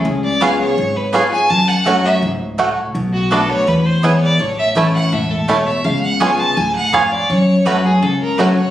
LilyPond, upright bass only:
\new Staff \with { instrumentName = "Upright bass" } { \clef bass \time 4/4 \key cis \phrygian \tempo 4 = 166 cis,2 gis,,2 | fis,2 cis,2 | b,,2 e,2 | a,,2 e,,2 |
cis,2 d,4 eis,4 | fis,2 cis,2 | }